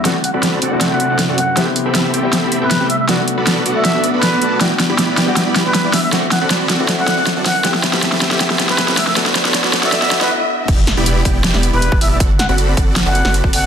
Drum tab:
CC |----------------|----------------|----------------|----------------|
HH |x-x-x-x-x-x-x-x-|x-x-x-x-x-x-x-x-|x-x-x-x-x-x-x-x-|x-x-x-x-x-x-x-o-|
SD |o---o---o---o---|o---o---o---o---|o---o---o---o---|o-o-o-o-o-o-o-o-|
BD |----------------|----------------|----------------|----------------|

CC |----------------|----------------|----------------|x---------------|
HH |x-x-x-x-x-x-x-o-|x-x-x-x-x-x-x-o-|x-x-x-x-x-x-----|x-x-x-x-x-x-x-o-|
SD |o-o-o-o-o-o-o-o-|oooooooooooooooo|oooooooooooo----|--o-----oo------|
BD |----------------|----------------|----------------|o-----o------o--|

CC |----------------|
HH |x-x-x-x-x-x-x-o-|
SD |--o-----o--o----|
BD |o-----o------o--|